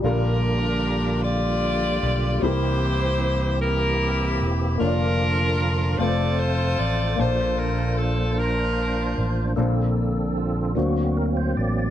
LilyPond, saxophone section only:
\new Staff \with { instrumentName = "Saxophone section" } { \time 6/8 \key bes \major \tempo 4. = 50 << { bes'4. d''4. | c''4. bes'4 r8 | bes'4. d''8 c''8 d''8 | c''8 bes'8 a'8 bes'4 r8 |
r2. | } \\ { <d' g'>4. <f' g'>4. | <e' g'>4. <e' g'>4. | <d' f'>4. <f' a'>4. | <f' a'>4. <d' f'>4. |
r2. | } >> }